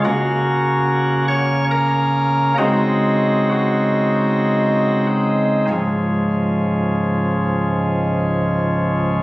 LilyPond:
<<
  \new Staff \with { instrumentName = "Pipe organ" } { \time 3/4 \key des \major \tempo 4 = 59 ges'4. des''8 bes'4 | ges'4 ges'4. r8 | <des,, des, aes, f aes des'>2. | }
  \new Staff \with { instrumentName = "Pipe organ" } { \time 3/4 \key des \major <des bes des'>2. | <des aes c' ees'>2. | r2. | }
>>